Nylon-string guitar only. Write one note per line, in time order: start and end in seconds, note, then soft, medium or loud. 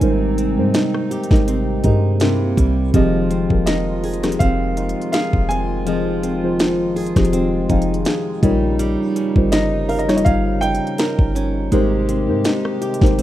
0.00 0.58 G3 medium
0.00 0.74 D#4 medium
0.38 1.47 C4 medium
0.75 1.83 D#4 medium
1.11 2.29 G4 medium
1.48 3.30 C4 medium
1.84 2.29 D#4 medium
2.21 3.02 C3 medium
2.57 2.93 G3 medium
2.94 5.85 F3 medium
3.30 4.39 C4 medium
3.67 4.77 D#4 medium
4.04 5.12 G#4 medium
4.40 5.49 C4 medium
4.77 6.59 D#4 medium
5.13 6.95 G#4 medium
5.50 6.22 C4 medium
5.86 8.42 F3 medium
6.23 7.32 C4 medium
6.60 7.69 D#4 medium
6.96 8.05 G#4 medium
7.33 8.50 C4 medium
7.69 9.19 D#4 medium
8.06 8.51 G#4 medium
8.43 8.79 G3 medium
8.79 11.71 G3 medium
9.16 10.24 C#4 medium
9.52 10.62 D#4 medium
9.89 10.97 A#4 medium
10.25 11.34 C#4 medium
10.62 12.45 D#4 medium
10.99 11.80 A#4 medium
11.35 11.80 C#4 medium
11.72 13.22 G#3 medium
12.09 13.18 C4 medium
12.45 13.22 D#4 medium
12.82 13.22 G4 medium
13.18 13.22 C4 medium